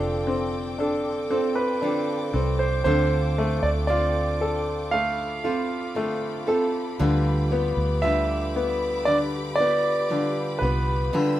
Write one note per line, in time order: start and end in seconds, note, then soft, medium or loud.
0.00 2.30 F1 medium
0.00 1.35 D3 soft
0.00 2.82 F3 medium
0.00 0.25 C4 soft
0.00 1.32 C4 medium
0.00 0.77 D4 soft
0.00 1.31 F4 medium
0.00 11.40 F4 medium
0.00 0.79 A4 medium
0.00 1.30 A4 medium
0.00 6.95 A4 medium
0.00 4.88 G5 medium
0.00 6.95 D6 medium
0.27 1.29 C4 soft
0.78 1.80 D4 soft
0.78 1.53 A4 medium
1.30 2.32 C4 soft
1.30 1.81 C4 soft
1.30 1.82 F4 soft
1.30 1.82 A4 soft
1.55 2.62 B4 medium
1.82 2.34 D3 soft
1.82 2.34 C4 medium
1.82 2.82 D4 soft
1.82 2.33 F4 medium
1.82 2.32 A4 medium
2.33 2.82 C2 medium
2.33 2.84 C4 soft
2.33 2.85 F4 soft
2.33 2.85 A4 soft
2.59 2.83 C5 medium
2.84 3.59 D2 medium
2.84 3.88 D3 medium
2.84 6.96 D3 medium
2.84 3.88 C4 medium
2.84 3.89 F4 medium
2.84 3.89 A4 medium
2.84 3.59 C5 medium
3.38 4.92 A3 medium
3.63 6.48 D2 medium
3.63 3.69 D5 medium
3.87 5.49 D3 medium
3.87 5.44 C4 medium
3.87 5.44 F4 medium
3.87 5.43 F4 soft
3.87 5.43 A4 medium
3.87 4.95 D5 medium
4.41 6.44 A4 soft
4.91 5.95 A3 soft
4.91 5.91 F5 medium
4.91 11.40 B5 medium
5.44 5.94 C4 soft
5.44 6.95 F4 medium
5.44 5.95 F4 soft
5.44 5.96 A4 soft
5.95 6.47 D3 soft
5.95 6.96 A3 soft
5.95 6.48 C4 soft
5.95 6.47 F4 medium
5.95 6.46 A4 medium
6.47 6.96 C2 medium
6.47 6.99 C4 soft
6.47 6.99 F4 soft
6.47 6.99 A4 medium
6.47 6.98 A4 soft
6.99 7.73 D2 medium
6.99 7.51 D3 medium
6.99 8.02 D3 medium
6.99 7.51 G3 medium
6.99 7.50 F4 medium
6.99 11.40 G4 medium
6.99 7.49 B4 medium
6.99 11.09 D6 medium
7.51 8.02 G3 soft
7.51 8.55 B3 medium
7.51 8.02 F4 soft
7.51 8.03 B4 soft
7.77 10.57 D2 medium
8.02 10.09 D3 medium
8.02 9.06 D3 soft
8.02 9.59 G3 medium
8.02 9.57 F4 medium
8.02 9.56 B4 medium
8.02 9.09 E5 medium
8.56 9.58 B3 medium
9.05 10.10 D3 soft
9.05 9.17 D5 medium
9.56 10.09 G3 soft
9.56 10.09 F4 soft
9.56 10.09 B4 soft
9.56 10.56 D5 medium
9.60 10.61 B3 medium
10.09 10.61 D3 soft
10.09 11.13 D3 soft
10.09 10.61 G3 medium
10.09 10.61 F4 medium
10.09 10.60 B4 medium
10.59 11.10 C2 medium
10.59 11.40 B3 medium
10.59 11.13 F4 soft
10.59 11.40 B4 medium
10.59 11.13 B4 soft
10.63 11.12 G3 soft
11.13 11.40 D3 medium
11.13 11.40 G3 medium
11.13 11.40 F4 medium
11.13 11.40 B4 medium
11.13 11.40 E6 medium